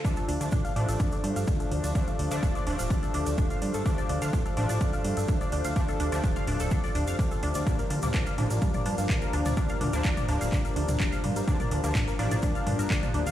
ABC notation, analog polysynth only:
X:1
M:4/4
L:1/16
Q:1/4=126
K:Dm
V:1 name="Analog polysynth"
[F,A,D]3 [F,A,D]3 [F,A,D]8- [F,A,D]2 | [F,A,D]3 [F,A,D]3 [F,A,D]8- [F,A,D]2 | [F,A,D]3 [F,A,D]3 [F,A,D]8- [F,A,D]2 | [F,A,D]3 [F,A,D]3 [F,A,D]8- [F,A,D]2 |
[F,B,D]3 [F,B,D]3 [F,B,D]8- [F,B,D]2 | [F,B,D]3 [F,B,D]3 [F,B,D]8- [F,B,D]2 | [F,B,D]3 [F,B,D]3 [F,B,D]8- [F,B,D]2 |]